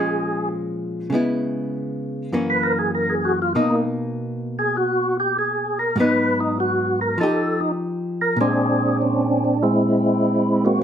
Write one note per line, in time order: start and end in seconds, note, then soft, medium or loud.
0.00 1.09 A#2 soft
0.00 1.12 F3 soft
0.00 1.11 G#3 soft
0.00 1.14 C#4 soft
0.00 0.49 G#4 medium
1.10 2.33 C#3 soft
1.10 2.33 G#3 medium
1.10 2.33 B3 medium
1.15 2.34 E4 medium
2.33 3.55 F#2 soft
2.33 3.55 E3 soft
2.33 3.55 A#3 soft
2.33 3.55 C#4 medium
2.50 2.73 B4 medium
2.63 2.78 A#4 medium
2.79 2.91 G#4 medium
2.95 3.15 A#4 medium
3.10 3.33 G#4 medium
3.25 3.40 F#4 medium
3.42 3.53 F4 medium
3.55 5.98 B2 soft
3.55 5.98 A#3 soft
3.55 3.76 D#4 medium
3.55 5.98 D#4 medium
3.70 3.85 A#3 medium
4.59 4.76 G#4 loud
4.77 5.17 F#4 medium
5.20 5.37 G4 medium
5.39 5.78 G#4 medium
5.79 5.97 A#4 loud
5.96 7.18 G#2 medium
5.96 7.17 F#3 medium
5.96 7.20 B3 medium
6.00 7.20 D#4 medium
6.00 6.40 B4 medium
6.40 6.58 D#4 medium
6.60 7.00 F#4 medium
7.01 7.19 A#4 loud
7.18 8.39 F3 medium
7.18 8.41 D#4 medium
7.18 7.60 A4 medium
7.23 8.42 G4 medium
7.61 7.72 D#4 medium
8.21 8.39 A#4 loud
8.36 10.80 A#2 medium
8.36 10.82 G#3 medium
8.41 9.58 C4 medium
8.41 9.44 D4 medium
8.41 8.97 G#4 medium
9.02 9.44 C#4 medium
9.45 9.63 D4 medium
9.63 10.79 G#3 medium
9.63 10.65 C4 medium
9.63 10.67 E4 medium
10.65 10.83 A#3 medium
10.65 10.83 C4 medium
10.65 10.83 F#4 loud